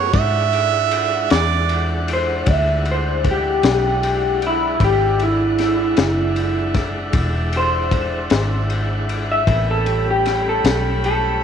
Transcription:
0.00 0.11 F#2 medium
0.00 0.11 A3 medium
0.00 0.11 B3 medium
0.00 0.10 C#4 medium
0.00 0.11 G4 medium
0.00 0.11 A4 medium
0.00 0.11 C#5 medium
0.00 0.13 C#5 medium
0.00 4.78 F#5 medium
0.00 0.10 B5 medium
0.13 1.27 G#2 medium
0.13 4.78 G#3 medium
0.13 4.78 D4 medium
0.13 4.78 E4 medium
0.13 9.45 D5 medium
0.13 1.27 E5 loud
0.13 4.78 F#5 medium
0.13 kick loud
0.13 ride medium
0.53 ride medium
0.91 ride medium
1.30 2.44 E2 medium
1.30 1.88 D5 medium
1.30 snare loud
1.30 ride medium
1.69 ride medium
2.08 ride medium
2.13 2.52 C5 medium
2.46 3.60 D2 medium
2.46 kick loud
2.46 ride medium
2.52 2.88 E5 medium
2.85 ride medium
2.91 3.27 C5 medium
3.24 kick medium
3.24 ride medium
3.31 4.41 G4 medium
3.63 4.77 B1 medium
3.63 snare loud
3.63 ride medium
4.03 ride medium
4.42 ride medium
4.47 4.82 E4 medium
4.80 5.94 G#1 loud
4.80 9.45 G#3 medium
4.80 9.45 D4 medium
4.80 9.45 E4 medium
4.80 9.46 E5 medium
4.80 9.44 F#5 medium
4.80 kick loud
4.80 ride medium
4.84 5.20 G4 medium
5.19 6.73 E4 medium
5.19 ride medium
5.58 snare soft
5.58 ride medium
5.97 7.11 F#1 medium
5.97 snare loud
5.97 ride medium
6.36 ride medium
6.74 kick medium
6.74 snare soft
6.74 ride medium
7.13 8.27 E1 medium
7.13 kick loud
7.13 ride medium
7.53 ride medium
7.57 9.27 C5 medium
7.91 kick medium
7.91 ride medium
8.30 9.45 G#1 medium
8.30 snare loud
8.30 ride medium
8.70 ride medium
9.09 ride medium
9.32 9.68 E5 medium
9.47 10.61 A1 medium
9.47 9.88 A#3 medium
9.47 9.88 B3 medium
9.47 11.44 C#4 medium
9.47 9.87 D4 medium
9.47 9.88 G#4 medium
9.47 11.44 G5 medium
9.47 11.44 B5 medium
9.47 kick loud
9.47 ride medium
9.71 10.07 A4 medium
9.86 11.44 G3 medium
9.86 11.44 A3 medium
9.86 11.44 C#4 medium
9.86 11.44 G4 medium
9.86 ride medium
10.11 10.46 G4 medium
10.26 snare soft
10.26 ride medium
10.49 11.04 A4 medium
10.64 11.44 B1 medium
10.64 snare loud
10.64 ride medium
11.04 11.44 A4 medium
11.04 ride medium

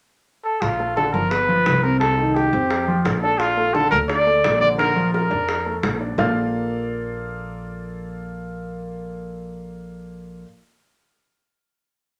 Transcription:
0.44 0.63 A4 medium
0.62 1.10 A#1 medium
0.62 0.96 F4 medium
0.62 high bongo medium
0.79 0.94 A3 medium
0.79 0.94 A4 medium
0.79 high bongo soft
0.96 1.11 D3 medium
0.96 1.11 D4 medium
0.96 1.15 A4 medium
0.96 high bongo medium
1.13 1.62 G1 medium
1.13 1.28 F3 medium
1.13 1.29 F4 medium
1.13 1.32 A#4 medium
1.30 1.45 B3 medium
1.30 1.84 B4 medium
1.30 1.46 B4 medium
1.30 high bongo medium
1.48 1.77 F3 medium
1.48 1.77 F4 medium
1.48 high bongo soft
1.66 2.47 C2 medium
1.66 high bongo medium
1.66 low bongo medium
1.83 1.98 C3 medium
1.83 1.98 C4 medium
1.83 1.99 A#4 medium
1.83 high bongo soft
2.00 2.15 C3 medium
2.00 2.15 C4 medium
2.00 2.36 A4 medium
2.00 high bongo medium
2.18 2.47 D#3 medium
2.18 2.47 D#4 medium
2.18 high bongo soft
2.35 3.05 G4 medium
2.35 high bongo medium
2.53 3.01 F2 medium
2.53 2.81 C4 medium
2.53 2.82 C5 medium
2.53 high bongo soft
2.71 high bongo medium
2.88 3.16 F3 medium
2.88 3.16 F4 medium
3.05 3.86 A#1 medium
3.05 high bongo medium
3.05 low bongo medium
3.22 3.51 D4 medium
3.22 3.40 A4 medium
3.22 3.52 D5 medium
3.22 high bongo soft
3.39 3.75 F4 medium
3.39 high bongo medium
3.57 3.71 A3 medium
3.57 3.72 A4 medium
3.57 high bongo soft
3.74 3.89 D3 medium
3.74 3.89 D4 medium
3.74 3.90 A4 medium
3.74 high bongo medium
3.91 4.40 D2 medium
3.91 4.06 A3 medium
3.91 4.06 A4 medium
3.91 3.99 A#4 medium
4.08 4.24 D4 medium
4.08 4.57 D5 loud
4.08 4.24 D5 medium
4.08 high bongo medium
4.26 4.55 A3 medium
4.26 4.55 A4 medium
4.26 high bongo soft
4.44 5.25 A#1 loud
4.44 high bongo medium
4.44 low bongo medium
4.61 4.76 D3 medium
4.61 4.76 D4 medium
4.61 4.69 D5 loud
4.61 high bongo soft
4.78 4.93 D3 medium
4.78 4.93 D4 medium
4.78 5.11 A#4 loud
4.78 high bongo medium
4.96 5.24 F3 medium
4.96 5.25 F4 medium
4.96 high bongo soft
5.14 5.79 A#4 medium
5.14 high bongo medium
5.30 5.79 F2 medium
5.30 5.59 D4 medium
5.30 5.59 D5 medium
5.30 high bongo soft
5.49 high bongo medium
5.66 5.94 A3 medium
5.66 5.94 A4 medium
5.83 6.14 A#1 medium
5.83 high bongo medium
5.83 low bongo medium
6.01 6.15 D4 medium
6.01 6.15 D5 medium
6.01 high bongo soft
6.18 10.42 A#1 medium
6.18 10.42 A#3 medium
6.18 10.42 F4 medium
6.18 10.42 A4 medium
6.18 10.43 A#4 medium
6.18 10.43 D5 medium
6.18 10.43 F5 loud
6.18 low bongo medium

